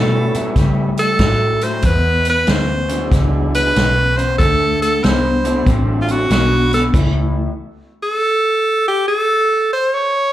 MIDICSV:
0, 0, Header, 1, 7, 480
1, 0, Start_track
1, 0, Tempo, 636943
1, 1390, Time_signature, 4, 2, 24, 8
1, 7782, End_track
2, 0, Start_track
2, 0, Title_t, "Tenor saxophone"
2, 0, Program_c, 0, 66
2, 0, Note_on_c, 0, 69, 97
2, 461, Note_off_c, 0, 69, 0
2, 750, Note_on_c, 0, 69, 95
2, 1233, Note_on_c, 0, 72, 84
2, 1244, Note_off_c, 0, 69, 0
2, 1403, Note_on_c, 0, 71, 96
2, 1414, Note_off_c, 0, 72, 0
2, 1712, Note_off_c, 0, 71, 0
2, 1731, Note_on_c, 0, 71, 89
2, 1889, Note_on_c, 0, 72, 82
2, 1901, Note_off_c, 0, 71, 0
2, 2360, Note_off_c, 0, 72, 0
2, 2681, Note_on_c, 0, 71, 96
2, 3143, Note_on_c, 0, 72, 98
2, 3155, Note_off_c, 0, 71, 0
2, 3299, Note_off_c, 0, 72, 0
2, 3303, Note_on_c, 0, 69, 100
2, 3600, Note_off_c, 0, 69, 0
2, 3636, Note_on_c, 0, 69, 91
2, 3801, Note_on_c, 0, 72, 79
2, 3812, Note_off_c, 0, 69, 0
2, 4275, Note_off_c, 0, 72, 0
2, 4535, Note_on_c, 0, 65, 61
2, 4606, Note_on_c, 0, 66, 79
2, 4618, Note_off_c, 0, 65, 0
2, 4760, Note_off_c, 0, 66, 0
2, 4766, Note_on_c, 0, 66, 90
2, 5052, Note_off_c, 0, 66, 0
2, 5080, Note_on_c, 0, 69, 82
2, 5150, Note_off_c, 0, 69, 0
2, 6049, Note_on_c, 0, 69, 101
2, 6660, Note_off_c, 0, 69, 0
2, 6694, Note_on_c, 0, 67, 94
2, 6837, Note_off_c, 0, 67, 0
2, 6844, Note_on_c, 0, 69, 97
2, 7302, Note_off_c, 0, 69, 0
2, 7334, Note_on_c, 0, 72, 83
2, 7495, Note_on_c, 0, 73, 91
2, 7506, Note_off_c, 0, 72, 0
2, 7782, Note_off_c, 0, 73, 0
2, 7782, End_track
3, 0, Start_track
3, 0, Title_t, "Tonewheel organ"
3, 0, Program_c, 1, 16
3, 0, Note_on_c, 1, 55, 65
3, 0, Note_on_c, 1, 57, 55
3, 0, Note_on_c, 1, 59, 52
3, 0, Note_on_c, 1, 61, 58
3, 0, Note_on_c, 1, 64, 66
3, 680, Note_off_c, 1, 57, 0
3, 681, Note_off_c, 1, 55, 0
3, 683, Note_off_c, 1, 64, 0
3, 685, Note_off_c, 1, 59, 0
3, 685, Note_off_c, 1, 61, 0
3, 2197, Note_on_c, 1, 56, 66
3, 2197, Note_on_c, 1, 62, 63
3, 2198, Note_on_c, 1, 54, 71
3, 2204, Note_on_c, 1, 64, 80
3, 2803, Note_off_c, 1, 54, 0
3, 2803, Note_off_c, 1, 56, 0
3, 2803, Note_off_c, 1, 62, 0
3, 2806, Note_off_c, 1, 64, 0
3, 4111, Note_on_c, 1, 62, 64
3, 4112, Note_on_c, 1, 54, 75
3, 4113, Note_on_c, 1, 57, 67
3, 4114, Note_on_c, 1, 60, 70
3, 4118, Note_on_c, 1, 64, 85
3, 4720, Note_off_c, 1, 54, 0
3, 4720, Note_off_c, 1, 62, 0
3, 4721, Note_off_c, 1, 57, 0
3, 4721, Note_off_c, 1, 60, 0
3, 4723, Note_off_c, 1, 64, 0
3, 7782, End_track
4, 0, Start_track
4, 0, Title_t, "Clean electric guitar"
4, 0, Program_c, 2, 27
4, 0, Note_on_c, 2, 45, 80
4, 0, Note_on_c, 2, 54, 87
4, 233, Note_off_c, 2, 45, 0
4, 236, Note_off_c, 2, 54, 0
4, 267, Note_on_c, 2, 45, 75
4, 272, Note_on_c, 2, 54, 80
4, 415, Note_off_c, 2, 45, 0
4, 417, Note_off_c, 2, 54, 0
4, 431, Note_on_c, 2, 45, 70
4, 434, Note_on_c, 2, 55, 92
4, 878, Note_off_c, 2, 45, 0
4, 880, Note_off_c, 2, 55, 0
4, 903, Note_on_c, 2, 45, 74
4, 906, Note_on_c, 2, 54, 86
4, 1191, Note_off_c, 2, 45, 0
4, 1192, Note_off_c, 2, 54, 0
4, 1224, Note_on_c, 2, 45, 71
4, 1229, Note_on_c, 2, 54, 78
4, 1373, Note_off_c, 2, 45, 0
4, 1376, Note_off_c, 2, 54, 0
4, 1388, Note_on_c, 2, 40, 79
4, 1389, Note_on_c, 2, 47, 86
4, 1836, Note_off_c, 2, 40, 0
4, 1837, Note_off_c, 2, 47, 0
4, 1860, Note_on_c, 2, 40, 77
4, 1863, Note_on_c, 2, 49, 80
4, 2149, Note_off_c, 2, 40, 0
4, 2151, Note_off_c, 2, 49, 0
4, 2174, Note_on_c, 2, 40, 69
4, 2177, Note_on_c, 2, 49, 76
4, 2328, Note_off_c, 2, 40, 0
4, 2330, Note_off_c, 2, 49, 0
4, 2345, Note_on_c, 2, 40, 76
4, 2347, Note_on_c, 2, 50, 88
4, 2794, Note_off_c, 2, 40, 0
4, 2795, Note_off_c, 2, 50, 0
4, 2823, Note_on_c, 2, 40, 76
4, 2829, Note_on_c, 2, 49, 82
4, 3111, Note_off_c, 2, 40, 0
4, 3113, Note_off_c, 2, 49, 0
4, 3145, Note_on_c, 2, 40, 70
4, 3149, Note_on_c, 2, 49, 81
4, 3293, Note_off_c, 2, 40, 0
4, 3295, Note_off_c, 2, 49, 0
4, 3313, Note_on_c, 2, 50, 88
4, 3314, Note_on_c, 2, 57, 91
4, 3759, Note_off_c, 2, 50, 0
4, 3759, Note_off_c, 2, 57, 0
4, 3786, Note_on_c, 2, 50, 79
4, 3787, Note_on_c, 2, 59, 86
4, 4072, Note_off_c, 2, 50, 0
4, 4072, Note_off_c, 2, 59, 0
4, 4103, Note_on_c, 2, 50, 81
4, 4107, Note_on_c, 2, 59, 87
4, 4252, Note_off_c, 2, 50, 0
4, 4254, Note_off_c, 2, 59, 0
4, 4272, Note_on_c, 2, 50, 84
4, 4275, Note_on_c, 2, 60, 95
4, 4718, Note_off_c, 2, 50, 0
4, 4720, Note_off_c, 2, 60, 0
4, 4749, Note_on_c, 2, 50, 84
4, 4752, Note_on_c, 2, 59, 83
4, 5033, Note_off_c, 2, 50, 0
4, 5035, Note_off_c, 2, 59, 0
4, 5073, Note_on_c, 2, 59, 83
4, 5074, Note_on_c, 2, 50, 73
4, 5217, Note_off_c, 2, 50, 0
4, 5217, Note_off_c, 2, 59, 0
4, 5232, Note_on_c, 2, 45, 86
4, 5239, Note_on_c, 2, 52, 86
4, 5645, Note_off_c, 2, 45, 0
4, 5649, Note_off_c, 2, 52, 0
4, 7782, End_track
5, 0, Start_track
5, 0, Title_t, "Fingered electric bass"
5, 0, Program_c, 3, 33
5, 0, Note_on_c, 3, 47, 84
5, 241, Note_off_c, 3, 47, 0
5, 423, Note_on_c, 3, 49, 83
5, 892, Note_off_c, 3, 49, 0
5, 903, Note_on_c, 3, 45, 87
5, 1372, Note_off_c, 3, 45, 0
5, 1379, Note_on_c, 3, 40, 89
5, 1850, Note_off_c, 3, 40, 0
5, 1874, Note_on_c, 3, 38, 91
5, 2338, Note_off_c, 3, 38, 0
5, 2348, Note_on_c, 3, 37, 77
5, 2815, Note_off_c, 3, 37, 0
5, 2838, Note_on_c, 3, 35, 85
5, 3300, Note_off_c, 3, 35, 0
5, 3312, Note_on_c, 3, 38, 83
5, 3777, Note_off_c, 3, 38, 0
5, 3800, Note_on_c, 3, 36, 92
5, 4260, Note_off_c, 3, 36, 0
5, 4269, Note_on_c, 3, 33, 83
5, 4735, Note_off_c, 3, 33, 0
5, 4751, Note_on_c, 3, 35, 89
5, 5216, Note_off_c, 3, 35, 0
5, 5228, Note_on_c, 3, 37, 96
5, 5631, Note_off_c, 3, 37, 0
5, 7782, End_track
6, 0, Start_track
6, 0, Title_t, "Muted fingered electric bass strokes"
6, 263, Note_on_c, 9, 29, 38
6, 339, Note_off_c, 9, 29, 0
6, 7782, End_track
7, 0, Start_track
7, 0, Title_t, "Drums"
7, 260, Note_on_c, 9, 42, 61
7, 335, Note_off_c, 9, 42, 0
7, 421, Note_on_c, 9, 36, 103
7, 421, Note_on_c, 9, 42, 76
7, 430, Note_on_c, 9, 38, 30
7, 496, Note_off_c, 9, 36, 0
7, 497, Note_off_c, 9, 42, 0
7, 505, Note_off_c, 9, 38, 0
7, 734, Note_on_c, 9, 42, 61
7, 810, Note_off_c, 9, 42, 0
7, 896, Note_on_c, 9, 42, 88
7, 899, Note_on_c, 9, 36, 80
7, 904, Note_on_c, 9, 38, 115
7, 971, Note_off_c, 9, 42, 0
7, 975, Note_off_c, 9, 36, 0
7, 979, Note_off_c, 9, 38, 0
7, 1215, Note_on_c, 9, 42, 60
7, 1290, Note_off_c, 9, 42, 0
7, 1374, Note_on_c, 9, 42, 89
7, 1381, Note_on_c, 9, 36, 108
7, 1450, Note_off_c, 9, 42, 0
7, 1457, Note_off_c, 9, 36, 0
7, 1695, Note_on_c, 9, 42, 69
7, 1770, Note_off_c, 9, 42, 0
7, 1861, Note_on_c, 9, 42, 81
7, 1869, Note_on_c, 9, 38, 105
7, 1936, Note_off_c, 9, 42, 0
7, 1944, Note_off_c, 9, 38, 0
7, 2179, Note_on_c, 9, 42, 66
7, 2255, Note_off_c, 9, 42, 0
7, 2348, Note_on_c, 9, 36, 102
7, 2350, Note_on_c, 9, 42, 84
7, 2358, Note_on_c, 9, 38, 32
7, 2423, Note_off_c, 9, 36, 0
7, 2425, Note_off_c, 9, 42, 0
7, 2434, Note_off_c, 9, 38, 0
7, 2671, Note_on_c, 9, 42, 67
7, 2746, Note_off_c, 9, 42, 0
7, 2835, Note_on_c, 9, 42, 88
7, 2843, Note_on_c, 9, 38, 115
7, 2910, Note_off_c, 9, 42, 0
7, 2918, Note_off_c, 9, 38, 0
7, 3154, Note_on_c, 9, 42, 61
7, 3230, Note_off_c, 9, 42, 0
7, 3313, Note_on_c, 9, 36, 113
7, 3318, Note_on_c, 9, 42, 84
7, 3388, Note_off_c, 9, 36, 0
7, 3393, Note_off_c, 9, 42, 0
7, 3633, Note_on_c, 9, 42, 62
7, 3709, Note_off_c, 9, 42, 0
7, 3795, Note_on_c, 9, 42, 74
7, 3803, Note_on_c, 9, 38, 107
7, 3870, Note_off_c, 9, 42, 0
7, 3878, Note_off_c, 9, 38, 0
7, 4105, Note_on_c, 9, 42, 59
7, 4180, Note_off_c, 9, 42, 0
7, 4269, Note_on_c, 9, 36, 112
7, 4269, Note_on_c, 9, 42, 76
7, 4344, Note_off_c, 9, 42, 0
7, 4345, Note_off_c, 9, 36, 0
7, 4585, Note_on_c, 9, 42, 56
7, 4660, Note_off_c, 9, 42, 0
7, 4751, Note_on_c, 9, 42, 84
7, 4760, Note_on_c, 9, 38, 110
7, 4827, Note_off_c, 9, 42, 0
7, 4835, Note_off_c, 9, 38, 0
7, 5069, Note_on_c, 9, 42, 59
7, 5077, Note_on_c, 9, 38, 30
7, 5144, Note_off_c, 9, 42, 0
7, 5152, Note_off_c, 9, 38, 0
7, 5228, Note_on_c, 9, 36, 116
7, 5230, Note_on_c, 9, 42, 89
7, 5230, Note_on_c, 9, 49, 81
7, 5304, Note_off_c, 9, 36, 0
7, 5305, Note_off_c, 9, 42, 0
7, 5305, Note_off_c, 9, 49, 0
7, 7782, End_track
0, 0, End_of_file